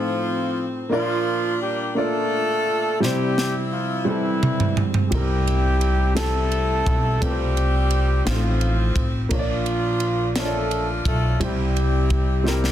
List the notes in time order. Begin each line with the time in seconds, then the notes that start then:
Already playing: A2 F3 C4 D#4 F4 A4 C5
0.89 A#2 F3 A#3 D4 F4 A#4 D5
0.94 A#3 D4
1.62 G3 G4
1.95 A3 A#3 D4 F4 A4 D5
1.99 F4
3.00 C3 G3 C4 E4 G4 C5, snare
3.04 C4 E4
3.38 snare
3.72 F3 F4
4.05 E3 G3 C4 E4 G4 A4
4.09 C4
4.43 mid tom
4.60 floor tom
4.77 floor tom
4.94 floor tom
5.10 C2 C3 G3 C4 E4 G4, kick, ride bell
5.14 A#4
5.47 ride bell
5.81 ride bell
6.15 G3 A3 C4 E4 G4 A4, snare, ride bell
6.52 ride bell
6.86 B1, kick, ride bell
7.21 C2 C3 G3 A3 C4 F4 G4 A4 B4, kick, ride bell
7.30 C5
7.57 ride bell
7.91 ride bell
8.25 A1 A2 F3 C4 D#4 F4 G4 C5, snare, ride bell
8.29 C4
8.34 A4
8.61 ride bell
8.96 A1, kick, ride bell
9.29 A#1 A#2 F3 A#3 D4 F4 A#4 C#5, kick, ride bell
9.33 A#3 D4
9.39 D5
9.66 ride bell
10.00 ride bell
10.35 A3 A#3 D4 F4 A4 C#5, snare, ride bell
10.45 D5
10.71 ride bell
11.05 B1 A3 A4, kick, ride bell
11.40 C2 C3 G3 C4 E4 G4 C5, kick, ride bell
11.77 ride bell
12.10 kick, ride bell
12.44 G3 C4 E4 G4 A#4, snare
12.48 G3 E4 G4
12.64 snare